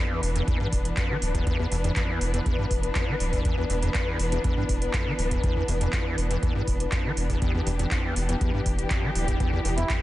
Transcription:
Already playing: E3 B3 D4 E4 B4 E5
0.00 F2
0.11 E2
0.23 E1, open hi-hat
0.29 A5
0.35 E2, closed hi-hat
0.48 E2, kick, closed hi-hat
0.60 G2
0.72 E1, kick, open hi-hat
0.85 closed hi-hat
0.97 F2, kick, clap, closed hi-hat
1.10 E3
1.22 D1, open hi-hat
1.35 E2, kick, closed hi-hat
1.47 E2, kick, closed hi-hat
1.59 E2
1.72 E1 E2, open hi-hat
1.84 E2, closed hi-hat
1.96 F2, kick, clap, closed hi-hat
2.09 E2
2.21 E1, open hi-hat
2.34 E2, closed hi-hat
2.46 E2, kick, closed hi-hat
2.59 G2
2.71 E1, kick, open hi-hat
2.83 closed hi-hat
2.95 F2, kick, clap, closed hi-hat
3.08 E3
3.20 D1, open hi-hat
3.33 E2, kick, open hi-hat
3.45 E2, kick, closed hi-hat
3.58 E2
3.70 E1 E2, open hi-hat
3.83 E2, closed hi-hat
3.94 F2, kick, clap, closed hi-hat
4.07 E2
4.19 E1, open hi-hat
4.32 E2, closed hi-hat
4.44 E2, kick, closed hi-hat
4.57 G2
4.69 E1, kick, open hi-hat
4.82 closed hi-hat
4.94 F2, kick, clap, closed hi-hat
5.07 E3
5.19 D1, open hi-hat
5.31 E2, kick, closed hi-hat
5.43 E2, kick, closed hi-hat
5.56 E2
5.68 E1 E2, open hi-hat
5.81 E2, closed hi-hat
5.93 F2, kick, clap, closed hi-hat
6.06 E2
6.18 E1, open hi-hat
6.30 E2, closed hi-hat
6.43 E2, kick, closed hi-hat
6.55 G2
6.67 E1, kick, open hi-hat
6.80 closed hi-hat
6.92 F2, kick, clap, closed hi-hat
7.05 E3
7.17 E1, open hi-hat
7.30 E2, kick, open hi-hat
7.42 E2 G4, kick, closed hi-hat
7.54 E2
7.67 E1 E2, open hi-hat
7.79 E2, closed hi-hat
7.91 F2, kick, clap, closed hi-hat
8.04 E2
8.16 E1, open hi-hat
8.22 E5
8.29 E2, closed hi-hat
8.41 E2, kick, closed hi-hat
8.54 G2
8.66 E1, kick, open hi-hat
8.79 closed hi-hat
8.90 F2, kick, clap, closed hi-hat
9.03 E3
9.15 D1, open hi-hat
9.28 E2, kick, closed hi-hat
9.40 E2, kick, closed hi-hat
9.53 E2
9.65 E1 E2, open hi-hat
9.78 E2 E4, closed hi-hat
9.90 F2, kick, clap, closed hi-hat

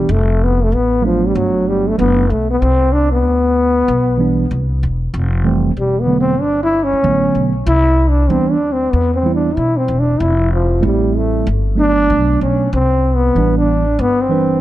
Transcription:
Already playing: G3
0.09 F1 A3
0.44 B3
0.63 A3
0.72 A1 B3
1.02 F3 F#3 A3 B3 D4
1.27 G3
1.35 G1 F#3
1.68 G3
1.89 A3
1.98 F#1 F#3 A3 B3 D4
2.30 B1 A3
2.51 B3
2.62 C2 C4
2.93 D4
3.13 B3
3.25 D2
3.88 B1
4.17 E3 G3 B3 D4
4.51 C2
4.83 E1
5.14 F1
5.44 E3 G3 A3 C4
5.77 E1 G3
6.00 B3
6.07 D3 F#3 A3 B3
6.21 C4
6.41 G1 D4
6.63 E4
6.83 C#4
6.93 muted upright bass stroke
7.03 A1 D3 F#3 A3 B3
7.35 B1
7.67 C2 E4
8.10 D4
8.29 D2 E3 G3 B3 C4 D4
8.52 D4
8.72 C4
8.92 E2 B3
9.13 B3 C4
9.23 E3 G3 B3 E4
9.34 D4
9.56 B2 E4
9.77 C4
9.88 E1
9.99 D4
10.20 F1 E4
10.53 F3
10.81 A1 G3 A3 C4 E4
10.85 G3
11.17 A3
11.47 G1
11.75 F#3 A3 B3 D4
11.80 D4
12.10 B1
12.41 B1 C#4
12.73 C2 C4
13.15 B3
13.35 A1 E3 G3 B3 D4
13.58 D4
13.99 G1 B3
14.21 C4
14.29 E3 G3 D4 B4

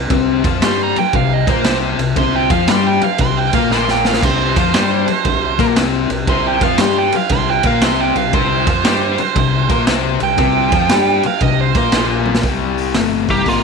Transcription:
0.10 C2 C3 C4, kick, ride
0.44 F2 F3 F4, kick, ride
0.60 G2 G3 G4 C6, snare, ride
0.83 A#5
0.95 G5, muted fingered electric bass stroke, muted distorted electric guitar stroke, ride
1.13 C2 C3 F5, kick, ride
1.34 D#5
1.47 A#2 A#3 A#4 C5, kick, ride
1.64 C2 C3 C4, snare, ride
1.98 C2 C3, ride
2.16 C2 C3 C4 C6, kick, ride
2.36 G5
2.50 F2 F3 F4 F5, kick, ride
2.67 G2 G3 G4 C6, snare, ride
2.87 G5
3.01 F5, muted fingered electric bass stroke, muted distorted electric guitar stroke, ride
3.18 C2 C3 C6, kick, ride
3.37 G5
3.53 A#2 A#3 A#4 F5, kick, ride
3.70 A#1 A#2 A#3 C6, snare
3.88 G5, snare
4.05 F5, snare
4.14 snare
4.22 C2 C3 C4 C5, kick, crash, ride
4.56 F2 F3 F4, kick, ride
4.73 G2 G3 G4, snare, ride
5.08 muted distorted electric guitar stroke, muted fingered electric bass stroke, ride
5.25 C2 C3, kick, ride
5.59 A#2 A#3 A#4, kick, ride
5.76 C2 C3 C4, snare, ride
6.10 C2 C3, ride
6.27 C2 C3 C4 C6, kick, ride
6.48 G5
6.61 F2 F3 F4 F5, kick, ride
6.78 G2 G3 G4 C6, snare, ride
6.98 G5
7.12 F5, muted fingered electric bass stroke, muted distorted electric guitar stroke, ride
7.29 C2 C3 C6, kick, ride
7.50 G5
7.63 A#2 A#3 A#4 F5, kick, ride
7.80 C2 C3 C4 C6, snare, ride
8.00 G5
8.15 C2 C3 F5, ride
8.33 C2 C3 C4 C5, kick, ride
8.67 F2 F3 F4, kick, ride
8.84 G2 G3 G4, snare, ride
9.18 muted distorted electric guitar stroke, muted fingered electric bass stroke, ride
9.35 C2 C3, kick, ride
9.69 A#2 A#3 A#4, kick, ride
9.87 C2 C3 C4, snare, ride
10.20 C2 C3 G5, ride
10.38 C2 C3 C4, kick, ride
10.71 F2 F3 F4, kick, ride
10.89 G2 G3 G4, snare, ride
11.23 F5, muted fingered electric bass stroke, muted distorted electric guitar stroke, ride
11.41 C2 C3 D#5, kick, ride
11.61 C5
11.75 A#2 A#3 A#4 C5, kick, ride
11.92 A#1 A#2 A#3, snare, ride
12.26 high tom
12.35 snare
12.43 C2 C3 G3, kick, open hi-hat
12.78 open hi-hat
12.94 G1 C3 A3, snare, open hi-hat
13.28 C3 G3 A#3 G4, kick, open hi-hat
13.46 G#1 C3 A#3 F4, kick, open hi-hat

